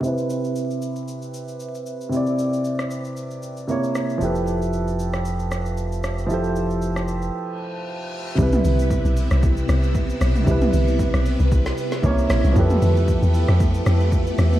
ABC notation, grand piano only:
X:1
M:4/4
L:1/8
Q:"Swing 16ths" 1/4=115
K:C
V:1 name="Grand piano"
[C,CEB]8 | [C,CEd]6 [C,_B,E_d]2 | [F,EGAB]8 | [F,EGAc]8 |
[C,G,EB]8 | [C,G,EB]6 [C,_B,_DE_d]2 | [F,EGAB]8 |]